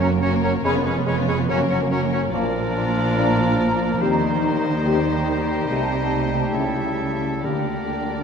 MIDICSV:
0, 0, Header, 1, 13, 480
1, 0, Start_track
1, 0, Tempo, 421644
1, 738, Time_signature, 4, 2, 24, 8
1, 7445, Tempo, 453858
1, 9237, End_track
2, 0, Start_track
2, 0, Title_t, "Flute section"
2, 0, Program_c, 0, 73
2, 5, Note_on_c, 0, 82, 64
2, 73, Note_off_c, 0, 82, 0
2, 240, Note_on_c, 0, 82, 56
2, 309, Note_off_c, 0, 82, 0
2, 485, Note_on_c, 0, 82, 54
2, 553, Note_off_c, 0, 82, 0
2, 737, Note_on_c, 0, 83, 64
2, 805, Note_off_c, 0, 83, 0
2, 989, Note_on_c, 0, 83, 54
2, 1057, Note_off_c, 0, 83, 0
2, 1230, Note_on_c, 0, 83, 60
2, 1298, Note_off_c, 0, 83, 0
2, 1463, Note_on_c, 0, 83, 60
2, 1532, Note_off_c, 0, 83, 0
2, 1701, Note_on_c, 0, 82, 62
2, 1769, Note_off_c, 0, 82, 0
2, 1931, Note_on_c, 0, 82, 56
2, 1999, Note_off_c, 0, 82, 0
2, 2183, Note_on_c, 0, 82, 60
2, 2251, Note_off_c, 0, 82, 0
2, 2413, Note_on_c, 0, 82, 58
2, 2482, Note_off_c, 0, 82, 0
2, 2645, Note_on_c, 0, 82, 66
2, 6112, Note_off_c, 0, 82, 0
2, 6472, Note_on_c, 0, 81, 51
2, 8356, Note_off_c, 0, 81, 0
2, 8395, Note_on_c, 0, 79, 38
2, 9237, Note_off_c, 0, 79, 0
2, 9237, End_track
3, 0, Start_track
3, 0, Title_t, "Oboe"
3, 0, Program_c, 1, 68
3, 6, Note_on_c, 1, 73, 48
3, 115, Note_off_c, 1, 73, 0
3, 252, Note_on_c, 1, 73, 63
3, 361, Note_off_c, 1, 73, 0
3, 493, Note_on_c, 1, 73, 55
3, 603, Note_off_c, 1, 73, 0
3, 731, Note_on_c, 1, 73, 66
3, 841, Note_off_c, 1, 73, 0
3, 981, Note_on_c, 1, 73, 50
3, 1087, Note_off_c, 1, 73, 0
3, 1220, Note_on_c, 1, 73, 60
3, 1327, Note_off_c, 1, 73, 0
3, 1462, Note_on_c, 1, 73, 63
3, 1569, Note_off_c, 1, 73, 0
3, 1708, Note_on_c, 1, 73, 68
3, 1814, Note_off_c, 1, 73, 0
3, 1934, Note_on_c, 1, 73, 52
3, 2043, Note_off_c, 1, 73, 0
3, 2179, Note_on_c, 1, 73, 58
3, 2286, Note_off_c, 1, 73, 0
3, 2421, Note_on_c, 1, 73, 50
3, 2528, Note_off_c, 1, 73, 0
3, 2657, Note_on_c, 1, 70, 66
3, 4569, Note_on_c, 1, 72, 58
3, 4586, Note_off_c, 1, 70, 0
3, 7440, Note_off_c, 1, 72, 0
3, 7447, Note_on_c, 1, 69, 45
3, 8403, Note_on_c, 1, 70, 36
3, 8419, Note_off_c, 1, 69, 0
3, 9237, Note_off_c, 1, 70, 0
3, 9237, End_track
4, 0, Start_track
4, 0, Title_t, "Violin section"
4, 0, Program_c, 2, 48
4, 8, Note_on_c, 2, 70, 52
4, 128, Note_off_c, 2, 70, 0
4, 130, Note_on_c, 2, 73, 46
4, 250, Note_off_c, 2, 73, 0
4, 250, Note_on_c, 2, 70, 57
4, 363, Note_off_c, 2, 70, 0
4, 366, Note_on_c, 2, 73, 52
4, 484, Note_on_c, 2, 70, 52
4, 491, Note_off_c, 2, 73, 0
4, 611, Note_off_c, 2, 70, 0
4, 616, Note_on_c, 2, 73, 50
4, 729, Note_on_c, 2, 71, 68
4, 738, Note_off_c, 2, 73, 0
4, 844, Note_on_c, 2, 73, 53
4, 846, Note_off_c, 2, 71, 0
4, 964, Note_on_c, 2, 71, 58
4, 972, Note_off_c, 2, 73, 0
4, 1088, Note_on_c, 2, 73, 59
4, 1091, Note_off_c, 2, 71, 0
4, 1212, Note_off_c, 2, 73, 0
4, 1214, Note_on_c, 2, 71, 53
4, 1324, Note_on_c, 2, 73, 52
4, 1326, Note_off_c, 2, 71, 0
4, 1450, Note_off_c, 2, 73, 0
4, 1457, Note_on_c, 2, 71, 49
4, 1577, Note_off_c, 2, 71, 0
4, 1578, Note_on_c, 2, 73, 55
4, 1697, Note_on_c, 2, 70, 60
4, 1698, Note_off_c, 2, 73, 0
4, 1809, Note_off_c, 2, 70, 0
4, 1819, Note_on_c, 2, 73, 48
4, 1932, Note_on_c, 2, 70, 50
4, 1938, Note_off_c, 2, 73, 0
4, 2054, Note_off_c, 2, 70, 0
4, 2057, Note_on_c, 2, 73, 47
4, 2177, Note_off_c, 2, 73, 0
4, 2177, Note_on_c, 2, 70, 60
4, 2289, Note_off_c, 2, 70, 0
4, 2294, Note_on_c, 2, 73, 46
4, 2415, Note_off_c, 2, 73, 0
4, 2417, Note_on_c, 2, 70, 51
4, 2534, Note_on_c, 2, 73, 48
4, 2536, Note_off_c, 2, 70, 0
4, 2650, Note_on_c, 2, 74, 72
4, 2655, Note_off_c, 2, 73, 0
4, 4524, Note_off_c, 2, 74, 0
4, 4577, Note_on_c, 2, 72, 63
4, 6436, Note_off_c, 2, 72, 0
4, 6484, Note_on_c, 2, 75, 53
4, 7402, Note_off_c, 2, 75, 0
4, 7444, Note_on_c, 2, 76, 47
4, 8354, Note_off_c, 2, 76, 0
4, 8402, Note_on_c, 2, 74, 44
4, 9237, Note_off_c, 2, 74, 0
4, 9237, End_track
5, 0, Start_track
5, 0, Title_t, "Violin section"
5, 0, Program_c, 3, 48
5, 14, Note_on_c, 3, 66, 57
5, 131, Note_off_c, 3, 66, 0
5, 133, Note_on_c, 3, 70, 52
5, 252, Note_off_c, 3, 70, 0
5, 255, Note_on_c, 3, 66, 64
5, 366, Note_off_c, 3, 66, 0
5, 379, Note_on_c, 3, 70, 53
5, 497, Note_off_c, 3, 70, 0
5, 499, Note_on_c, 3, 66, 50
5, 618, Note_off_c, 3, 66, 0
5, 619, Note_on_c, 3, 70, 58
5, 739, Note_off_c, 3, 70, 0
5, 747, Note_on_c, 3, 68, 60
5, 854, Note_on_c, 3, 65, 44
5, 855, Note_off_c, 3, 68, 0
5, 976, Note_off_c, 3, 65, 0
5, 979, Note_on_c, 3, 68, 52
5, 1098, Note_off_c, 3, 68, 0
5, 1100, Note_on_c, 3, 65, 52
5, 1216, Note_on_c, 3, 68, 49
5, 1218, Note_off_c, 3, 65, 0
5, 1327, Note_off_c, 3, 68, 0
5, 1329, Note_on_c, 3, 65, 59
5, 1453, Note_off_c, 3, 65, 0
5, 1457, Note_on_c, 3, 68, 57
5, 1575, Note_on_c, 3, 65, 58
5, 1577, Note_off_c, 3, 68, 0
5, 1696, Note_off_c, 3, 65, 0
5, 1696, Note_on_c, 3, 66, 61
5, 1809, Note_off_c, 3, 66, 0
5, 1837, Note_on_c, 3, 70, 53
5, 1947, Note_off_c, 3, 70, 0
5, 1953, Note_on_c, 3, 66, 52
5, 2065, Note_off_c, 3, 66, 0
5, 2070, Note_on_c, 3, 70, 52
5, 2183, Note_off_c, 3, 70, 0
5, 2188, Note_on_c, 3, 66, 55
5, 2294, Note_off_c, 3, 66, 0
5, 2306, Note_on_c, 3, 70, 54
5, 2421, Note_off_c, 3, 70, 0
5, 2424, Note_on_c, 3, 66, 45
5, 2537, Note_on_c, 3, 70, 56
5, 2540, Note_off_c, 3, 66, 0
5, 2651, Note_on_c, 3, 65, 67
5, 2656, Note_off_c, 3, 70, 0
5, 4525, Note_off_c, 3, 65, 0
5, 4576, Note_on_c, 3, 67, 61
5, 8356, Note_off_c, 3, 67, 0
5, 8402, Note_on_c, 3, 67, 39
5, 9237, Note_off_c, 3, 67, 0
5, 9237, End_track
6, 0, Start_track
6, 0, Title_t, "Clarinet"
6, 0, Program_c, 4, 71
6, 16, Note_on_c, 4, 61, 57
6, 123, Note_off_c, 4, 61, 0
6, 249, Note_on_c, 4, 61, 59
6, 359, Note_off_c, 4, 61, 0
6, 494, Note_on_c, 4, 61, 58
6, 604, Note_off_c, 4, 61, 0
6, 739, Note_on_c, 4, 61, 66
6, 847, Note_off_c, 4, 61, 0
6, 978, Note_on_c, 4, 61, 56
6, 1086, Note_off_c, 4, 61, 0
6, 1215, Note_on_c, 4, 61, 55
6, 1323, Note_off_c, 4, 61, 0
6, 1456, Note_on_c, 4, 61, 51
6, 1565, Note_off_c, 4, 61, 0
6, 1707, Note_on_c, 4, 61, 70
6, 1813, Note_off_c, 4, 61, 0
6, 1942, Note_on_c, 4, 61, 57
6, 2049, Note_off_c, 4, 61, 0
6, 2177, Note_on_c, 4, 61, 53
6, 2285, Note_off_c, 4, 61, 0
6, 2419, Note_on_c, 4, 61, 51
6, 2526, Note_off_c, 4, 61, 0
6, 2654, Note_on_c, 4, 62, 68
6, 4526, Note_off_c, 4, 62, 0
6, 4579, Note_on_c, 4, 63, 61
6, 7451, Note_on_c, 4, 64, 47
6, 7467, Note_off_c, 4, 63, 0
6, 8394, Note_off_c, 4, 64, 0
6, 8400, Note_on_c, 4, 62, 43
6, 9237, Note_off_c, 4, 62, 0
6, 9237, End_track
7, 0, Start_track
7, 0, Title_t, "Harp"
7, 0, Program_c, 5, 46
7, 0, Note_on_c, 5, 42, 65
7, 0, Note_on_c, 5, 49, 52
7, 0, Note_on_c, 5, 61, 56
7, 0, Note_on_c, 5, 66, 55
7, 0, Note_on_c, 5, 70, 53
7, 8, Note_on_c, 5, 54, 56
7, 245, Note_off_c, 5, 61, 0
7, 259, Note_on_c, 5, 61, 53
7, 483, Note_off_c, 5, 70, 0
7, 496, Note_on_c, 5, 70, 58
7, 736, Note_on_c, 5, 41, 65
7, 757, Note_off_c, 5, 66, 0
7, 758, Note_off_c, 5, 42, 0
7, 758, Note_off_c, 5, 49, 0
7, 758, Note_off_c, 5, 54, 0
7, 758, Note_off_c, 5, 70, 0
7, 978, Note_on_c, 5, 56, 53
7, 1206, Note_off_c, 5, 61, 0
7, 1220, Note_on_c, 5, 61, 51
7, 1464, Note_on_c, 5, 71, 52
7, 1707, Note_on_c, 5, 42, 64
7, 1716, Note_off_c, 5, 41, 0
7, 1716, Note_off_c, 5, 56, 0
7, 1720, Note_off_c, 5, 71, 0
7, 1943, Note_on_c, 5, 54, 53
7, 2167, Note_off_c, 5, 61, 0
7, 2181, Note_on_c, 5, 61, 59
7, 2419, Note_on_c, 5, 70, 55
7, 2663, Note_on_c, 5, 46, 67
7, 2677, Note_off_c, 5, 61, 0
7, 2678, Note_off_c, 5, 54, 0
7, 2680, Note_off_c, 5, 42, 0
7, 2900, Note_on_c, 5, 53, 49
7, 3135, Note_on_c, 5, 62, 50
7, 3360, Note_off_c, 5, 70, 0
7, 3617, Note_on_c, 5, 58, 49
7, 3842, Note_off_c, 5, 53, 0
7, 3855, Note_on_c, 5, 53, 47
7, 4079, Note_off_c, 5, 62, 0
7, 4334, Note_on_c, 5, 70, 51
7, 4577, Note_on_c, 5, 51, 58
7, 4591, Note_off_c, 5, 53, 0
7, 4595, Note_off_c, 5, 46, 0
7, 4814, Note_on_c, 5, 63, 46
7, 5036, Note_off_c, 5, 70, 0
7, 5049, Note_on_c, 5, 70, 45
7, 5294, Note_on_c, 5, 67, 43
7, 5525, Note_on_c, 5, 55, 41
7, 5755, Note_off_c, 5, 63, 0
7, 5769, Note_on_c, 5, 63, 43
7, 5988, Note_off_c, 5, 70, 0
7, 6002, Note_on_c, 5, 70, 42
7, 6231, Note_off_c, 5, 67, 0
7, 6245, Note_on_c, 5, 67, 45
7, 6487, Note_on_c, 5, 48, 47
7, 6498, Note_off_c, 5, 58, 0
7, 6500, Note_off_c, 5, 51, 0
7, 6500, Note_off_c, 5, 70, 0
7, 6717, Note_off_c, 5, 55, 0
7, 6730, Note_on_c, 5, 55, 37
7, 6957, Note_off_c, 5, 63, 0
7, 6971, Note_on_c, 5, 63, 35
7, 7214, Note_on_c, 5, 69, 36
7, 7453, Note_on_c, 5, 49, 44
7, 7467, Note_off_c, 5, 48, 0
7, 7469, Note_off_c, 5, 63, 0
7, 7671, Note_off_c, 5, 55, 0
7, 7683, Note_on_c, 5, 55, 33
7, 7922, Note_on_c, 5, 64, 38
7, 8147, Note_off_c, 5, 69, 0
7, 8160, Note_on_c, 5, 69, 31
7, 8405, Note_on_c, 5, 50, 39
7, 8420, Note_off_c, 5, 49, 0
7, 8420, Note_off_c, 5, 69, 0
7, 8421, Note_off_c, 5, 64, 0
7, 8893, Note_on_c, 5, 70, 27
7, 9124, Note_off_c, 5, 67, 0
7, 9137, Note_on_c, 5, 67, 31
7, 9237, Note_off_c, 5, 50, 0
7, 9237, Note_off_c, 5, 55, 0
7, 9237, Note_off_c, 5, 67, 0
7, 9237, Note_off_c, 5, 70, 0
7, 9237, End_track
8, 0, Start_track
8, 0, Title_t, "French horn section"
8, 0, Program_c, 6, 60
8, 732, Note_on_c, 6, 61, 66
8, 736, Note_on_c, 6, 59, 62
8, 902, Note_off_c, 6, 61, 0
8, 905, Note_off_c, 6, 59, 0
8, 1696, Note_on_c, 6, 58, 71
8, 1702, Note_on_c, 6, 61, 73
8, 1864, Note_off_c, 6, 58, 0
8, 1868, Note_off_c, 6, 61, 0
8, 2658, Note_on_c, 6, 58, 66
8, 2658, Note_on_c, 6, 62, 66
8, 2824, Note_off_c, 6, 58, 0
8, 2824, Note_off_c, 6, 62, 0
8, 3620, Note_on_c, 6, 58, 69
8, 3621, Note_on_c, 6, 62, 68
8, 3786, Note_off_c, 6, 58, 0
8, 3786, Note_off_c, 6, 62, 0
8, 4565, Note_on_c, 6, 60, 60
8, 4567, Note_on_c, 6, 67, 58
8, 4734, Note_off_c, 6, 60, 0
8, 4735, Note_off_c, 6, 67, 0
8, 5526, Note_on_c, 6, 60, 58
8, 5530, Note_on_c, 6, 67, 59
8, 5690, Note_off_c, 6, 60, 0
8, 5692, Note_off_c, 6, 67, 0
8, 6497, Note_on_c, 6, 57, 54
8, 6499, Note_on_c, 6, 67, 46
8, 6658, Note_off_c, 6, 57, 0
8, 6660, Note_off_c, 6, 67, 0
8, 7448, Note_on_c, 6, 57, 49
8, 7450, Note_on_c, 6, 67, 46
8, 7608, Note_off_c, 6, 57, 0
8, 7609, Note_off_c, 6, 67, 0
8, 8396, Note_on_c, 6, 67, 40
8, 8398, Note_on_c, 6, 58, 40
8, 8567, Note_off_c, 6, 67, 0
8, 8568, Note_off_c, 6, 58, 0
8, 9237, End_track
9, 0, Start_track
9, 0, Title_t, "Viola section"
9, 0, Program_c, 7, 48
9, 2, Note_on_c, 7, 61, 50
9, 123, Note_on_c, 7, 58, 50
9, 125, Note_off_c, 7, 61, 0
9, 247, Note_off_c, 7, 58, 0
9, 248, Note_on_c, 7, 61, 65
9, 362, Note_off_c, 7, 61, 0
9, 368, Note_on_c, 7, 58, 55
9, 492, Note_off_c, 7, 58, 0
9, 495, Note_on_c, 7, 61, 53
9, 615, Note_on_c, 7, 58, 55
9, 616, Note_off_c, 7, 61, 0
9, 736, Note_on_c, 7, 61, 57
9, 737, Note_off_c, 7, 58, 0
9, 849, Note_off_c, 7, 61, 0
9, 857, Note_on_c, 7, 59, 55
9, 978, Note_off_c, 7, 59, 0
9, 979, Note_on_c, 7, 61, 58
9, 1096, Note_on_c, 7, 59, 49
9, 1098, Note_off_c, 7, 61, 0
9, 1216, Note_off_c, 7, 59, 0
9, 1221, Note_on_c, 7, 61, 54
9, 1330, Note_off_c, 7, 61, 0
9, 1340, Note_on_c, 7, 59, 54
9, 1458, Note_off_c, 7, 59, 0
9, 1464, Note_on_c, 7, 61, 56
9, 1577, Note_on_c, 7, 59, 55
9, 1580, Note_off_c, 7, 61, 0
9, 1698, Note_off_c, 7, 59, 0
9, 1701, Note_on_c, 7, 61, 54
9, 1811, Note_off_c, 7, 61, 0
9, 1820, Note_on_c, 7, 58, 56
9, 1939, Note_off_c, 7, 58, 0
9, 1944, Note_on_c, 7, 61, 56
9, 2061, Note_off_c, 7, 61, 0
9, 2065, Note_on_c, 7, 58, 54
9, 2181, Note_off_c, 7, 58, 0
9, 2185, Note_on_c, 7, 61, 59
9, 2292, Note_off_c, 7, 61, 0
9, 2311, Note_on_c, 7, 58, 52
9, 2424, Note_off_c, 7, 58, 0
9, 2430, Note_on_c, 7, 61, 51
9, 2543, Note_off_c, 7, 61, 0
9, 2548, Note_on_c, 7, 58, 54
9, 2661, Note_off_c, 7, 58, 0
9, 2674, Note_on_c, 7, 58, 64
9, 6442, Note_off_c, 7, 58, 0
9, 6488, Note_on_c, 7, 57, 50
9, 8358, Note_off_c, 7, 57, 0
9, 8405, Note_on_c, 7, 58, 34
9, 9237, Note_off_c, 7, 58, 0
9, 9237, End_track
10, 0, Start_track
10, 0, Title_t, "Bassoon"
10, 0, Program_c, 8, 70
10, 12, Note_on_c, 8, 54, 48
10, 120, Note_off_c, 8, 54, 0
10, 255, Note_on_c, 8, 54, 57
10, 364, Note_off_c, 8, 54, 0
10, 501, Note_on_c, 8, 54, 52
10, 609, Note_off_c, 8, 54, 0
10, 735, Note_on_c, 8, 56, 66
10, 844, Note_off_c, 8, 56, 0
10, 980, Note_on_c, 8, 56, 58
10, 1087, Note_off_c, 8, 56, 0
10, 1210, Note_on_c, 8, 56, 60
10, 1319, Note_off_c, 8, 56, 0
10, 1454, Note_on_c, 8, 56, 49
10, 1563, Note_off_c, 8, 56, 0
10, 1695, Note_on_c, 8, 54, 61
10, 1803, Note_off_c, 8, 54, 0
10, 1948, Note_on_c, 8, 54, 52
10, 2053, Note_off_c, 8, 54, 0
10, 2180, Note_on_c, 8, 54, 54
10, 2287, Note_off_c, 8, 54, 0
10, 2425, Note_on_c, 8, 54, 53
10, 2531, Note_off_c, 8, 54, 0
10, 2661, Note_on_c, 8, 53, 67
10, 4529, Note_off_c, 8, 53, 0
10, 4583, Note_on_c, 8, 55, 63
10, 8359, Note_off_c, 8, 55, 0
10, 8406, Note_on_c, 8, 55, 39
10, 9237, Note_off_c, 8, 55, 0
10, 9237, End_track
11, 0, Start_track
11, 0, Title_t, "Timpani"
11, 0, Program_c, 10, 47
11, 8395, Note_on_c, 10, 50, 58
11, 9082, Note_off_c, 10, 50, 0
11, 9237, End_track
12, 0, Start_track
12, 0, Title_t, "Cello section"
12, 0, Program_c, 11, 48
12, 0, Note_on_c, 11, 42, 70
12, 738, Note_off_c, 11, 42, 0
12, 740, Note_on_c, 11, 41, 70
12, 1679, Note_off_c, 11, 41, 0
12, 1702, Note_on_c, 11, 42, 72
12, 2658, Note_off_c, 11, 42, 0
12, 2658, Note_on_c, 11, 46, 71
12, 4528, Note_off_c, 11, 46, 0
12, 4572, Note_on_c, 11, 51, 72
12, 6440, Note_off_c, 11, 51, 0
12, 6486, Note_on_c, 11, 48, 59
12, 7429, Note_off_c, 11, 48, 0
12, 7448, Note_on_c, 11, 49, 46
12, 8379, Note_off_c, 11, 49, 0
12, 8400, Note_on_c, 11, 50, 44
12, 9237, Note_off_c, 11, 50, 0
12, 9237, End_track
13, 0, Start_track
13, 0, Title_t, "Double bass section"
13, 0, Program_c, 12, 48
13, 0, Note_on_c, 12, 30, 64
13, 738, Note_on_c, 12, 29, 67
13, 739, Note_off_c, 12, 30, 0
13, 1678, Note_off_c, 12, 29, 0
13, 1702, Note_on_c, 12, 30, 63
13, 2658, Note_off_c, 12, 30, 0
13, 2658, Note_on_c, 12, 34, 69
13, 4528, Note_off_c, 12, 34, 0
13, 4575, Note_on_c, 12, 39, 59
13, 6442, Note_off_c, 12, 39, 0
13, 6486, Note_on_c, 12, 36, 56
13, 7429, Note_off_c, 12, 36, 0
13, 7451, Note_on_c, 12, 37, 41
13, 8380, Note_off_c, 12, 37, 0
13, 8401, Note_on_c, 12, 38, 39
13, 9237, Note_off_c, 12, 38, 0
13, 9237, End_track
0, 0, End_of_file